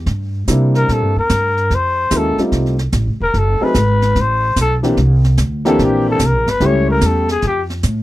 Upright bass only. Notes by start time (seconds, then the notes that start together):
0.06 G2
0.48 C3
0.88 A#2
1.02 G2
1.16 E2
1.30 G2
1.71 F2
2.11 D#2
2.38 muted upright bass stroke
2.52 C2
2.93 A1
3.06 F1
3.20 D#1
3.34 F#1
3.61 muted upright bass stroke
3.75 G#1
4.15 A1
4.56 B1
4.97 C2
5.38 D2
5.79 A#1
6.20 C2
6.33 A#1
6.46 G1
6.60 C#2
7.02 E2
7.43 F2
7.83 A2